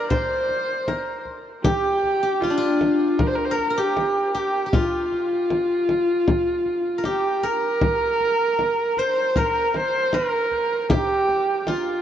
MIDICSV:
0, 0, Header, 1, 4, 480
1, 0, Start_track
1, 0, Tempo, 771208
1, 1024, Time_signature, 4, 2, 24, 8
1, 7481, End_track
2, 0, Start_track
2, 0, Title_t, "Guzheng"
2, 0, Program_c, 0, 107
2, 0, Note_on_c, 0, 70, 68
2, 0, Note_on_c, 0, 74, 88
2, 63, Note_on_c, 0, 72, 72
2, 544, Note_off_c, 0, 70, 0
2, 547, Note_on_c, 0, 70, 61
2, 858, Note_off_c, 0, 74, 0
2, 1024, Note_on_c, 0, 67, 89
2, 1294, Note_off_c, 0, 72, 0
2, 1384, Note_off_c, 0, 67, 0
2, 1386, Note_on_c, 0, 67, 65
2, 1514, Note_on_c, 0, 65, 67
2, 1556, Note_on_c, 0, 62, 59
2, 1599, Note_off_c, 0, 65, 0
2, 1601, Note_on_c, 0, 65, 75
2, 1868, Note_off_c, 0, 70, 0
2, 2185, Note_on_c, 0, 70, 83
2, 2301, Note_off_c, 0, 70, 0
2, 2304, Note_on_c, 0, 70, 59
2, 2347, Note_off_c, 0, 67, 0
2, 2349, Note_on_c, 0, 67, 75
2, 2703, Note_off_c, 0, 67, 0
2, 2705, Note_on_c, 0, 67, 77
2, 2898, Note_off_c, 0, 67, 0
2, 2901, Note_on_c, 0, 67, 49
2, 2945, Note_off_c, 0, 65, 0
2, 2948, Note_on_c, 0, 65, 72
2, 3294, Note_off_c, 0, 62, 0
2, 3625, Note_off_c, 0, 70, 0
2, 4345, Note_on_c, 0, 70, 52
2, 4364, Note_off_c, 0, 67, 0
2, 4389, Note_on_c, 0, 67, 72
2, 4518, Note_off_c, 0, 65, 0
2, 4624, Note_off_c, 0, 70, 0
2, 4626, Note_on_c, 0, 70, 82
2, 4975, Note_off_c, 0, 70, 0
2, 4975, Note_on_c, 0, 71, 82
2, 5074, Note_off_c, 0, 71, 0
2, 5074, Note_on_c, 0, 70, 82
2, 5174, Note_off_c, 0, 70, 0
2, 5174, Note_on_c, 0, 71, 82
2, 5267, Note_off_c, 0, 71, 0
2, 5267, Note_on_c, 0, 70, 82
2, 5594, Note_on_c, 0, 72, 83
2, 5827, Note_off_c, 0, 70, 0
2, 5829, Note_on_c, 0, 70, 79
2, 5852, Note_off_c, 0, 67, 0
2, 6307, Note_off_c, 0, 70, 0
2, 6310, Note_on_c, 0, 70, 76
2, 6784, Note_on_c, 0, 67, 82
2, 6825, Note_off_c, 0, 72, 0
2, 7268, Note_on_c, 0, 65, 75
2, 7481, Note_off_c, 0, 65, 0
2, 7481, Note_off_c, 0, 67, 0
2, 7481, Note_off_c, 0, 70, 0
2, 7481, End_track
3, 0, Start_track
3, 0, Title_t, "Horsehead fiddle"
3, 0, Program_c, 1, 110
3, 56, Note_on_c, 1, 72, 95
3, 756, Note_off_c, 1, 72, 0
3, 1016, Note_on_c, 1, 67, 102
3, 1496, Note_on_c, 1, 65, 85
3, 1506, Note_off_c, 1, 67, 0
3, 1987, Note_on_c, 1, 70, 87
3, 1996, Note_off_c, 1, 65, 0
3, 2036, Note_on_c, 1, 72, 91
3, 2045, Note_off_c, 1, 70, 0
3, 2088, Note_on_c, 1, 70, 77
3, 2097, Note_off_c, 1, 72, 0
3, 2147, Note_on_c, 1, 72, 85
3, 2157, Note_off_c, 1, 70, 0
3, 2200, Note_on_c, 1, 70, 96
3, 2209, Note_off_c, 1, 72, 0
3, 2363, Note_on_c, 1, 67, 82
3, 2372, Note_off_c, 1, 70, 0
3, 2712, Note_off_c, 1, 67, 0
3, 2716, Note_on_c, 1, 67, 90
3, 2955, Note_on_c, 1, 65, 94
3, 2964, Note_off_c, 1, 67, 0
3, 4390, Note_off_c, 1, 65, 0
3, 4401, Note_on_c, 1, 67, 86
3, 4635, Note_on_c, 1, 70, 105
3, 4645, Note_off_c, 1, 67, 0
3, 5591, Note_on_c, 1, 72, 103
3, 5601, Note_off_c, 1, 70, 0
3, 5842, Note_on_c, 1, 70, 108
3, 5852, Note_off_c, 1, 72, 0
3, 6074, Note_on_c, 1, 72, 101
3, 6083, Note_off_c, 1, 70, 0
3, 6313, Note_on_c, 1, 70, 96
3, 6322, Note_off_c, 1, 72, 0
3, 6787, Note_off_c, 1, 70, 0
3, 6792, Note_on_c, 1, 67, 105
3, 7272, Note_on_c, 1, 65, 94
3, 7281, Note_off_c, 1, 67, 0
3, 7481, Note_off_c, 1, 65, 0
3, 7481, End_track
4, 0, Start_track
4, 0, Title_t, "Frame drum"
4, 66, Note_on_c, 9, 64, 63
4, 128, Note_off_c, 9, 64, 0
4, 303, Note_on_c, 9, 64, 21
4, 365, Note_off_c, 9, 64, 0
4, 546, Note_on_c, 9, 64, 57
4, 608, Note_off_c, 9, 64, 0
4, 781, Note_on_c, 9, 64, 22
4, 843, Note_off_c, 9, 64, 0
4, 1023, Note_on_c, 9, 64, 71
4, 1085, Note_off_c, 9, 64, 0
4, 1267, Note_on_c, 9, 64, 20
4, 1329, Note_off_c, 9, 64, 0
4, 1506, Note_on_c, 9, 64, 52
4, 1568, Note_off_c, 9, 64, 0
4, 1747, Note_on_c, 9, 64, 52
4, 1809, Note_off_c, 9, 64, 0
4, 1985, Note_on_c, 9, 64, 64
4, 2047, Note_off_c, 9, 64, 0
4, 2231, Note_on_c, 9, 64, 20
4, 2293, Note_off_c, 9, 64, 0
4, 2468, Note_on_c, 9, 64, 55
4, 2530, Note_off_c, 9, 64, 0
4, 2708, Note_on_c, 9, 64, 22
4, 2770, Note_off_c, 9, 64, 0
4, 2944, Note_on_c, 9, 64, 75
4, 3006, Note_off_c, 9, 64, 0
4, 3188, Note_on_c, 9, 64, 20
4, 3250, Note_off_c, 9, 64, 0
4, 3426, Note_on_c, 9, 64, 52
4, 3488, Note_off_c, 9, 64, 0
4, 3666, Note_on_c, 9, 64, 51
4, 3728, Note_off_c, 9, 64, 0
4, 3906, Note_on_c, 9, 64, 65
4, 3968, Note_off_c, 9, 64, 0
4, 4144, Note_on_c, 9, 64, 21
4, 4207, Note_off_c, 9, 64, 0
4, 4381, Note_on_c, 9, 64, 53
4, 4443, Note_off_c, 9, 64, 0
4, 4624, Note_on_c, 9, 64, 19
4, 4686, Note_off_c, 9, 64, 0
4, 4863, Note_on_c, 9, 64, 70
4, 4926, Note_off_c, 9, 64, 0
4, 5108, Note_on_c, 9, 64, 20
4, 5170, Note_off_c, 9, 64, 0
4, 5346, Note_on_c, 9, 64, 48
4, 5408, Note_off_c, 9, 64, 0
4, 5582, Note_on_c, 9, 64, 24
4, 5644, Note_off_c, 9, 64, 0
4, 5824, Note_on_c, 9, 64, 64
4, 5886, Note_off_c, 9, 64, 0
4, 6064, Note_on_c, 9, 64, 49
4, 6127, Note_off_c, 9, 64, 0
4, 6304, Note_on_c, 9, 64, 64
4, 6366, Note_off_c, 9, 64, 0
4, 6544, Note_on_c, 9, 64, 25
4, 6606, Note_off_c, 9, 64, 0
4, 6783, Note_on_c, 9, 64, 82
4, 6845, Note_off_c, 9, 64, 0
4, 7025, Note_on_c, 9, 64, 24
4, 7087, Note_off_c, 9, 64, 0
4, 7263, Note_on_c, 9, 64, 60
4, 7325, Note_off_c, 9, 64, 0
4, 7481, End_track
0, 0, End_of_file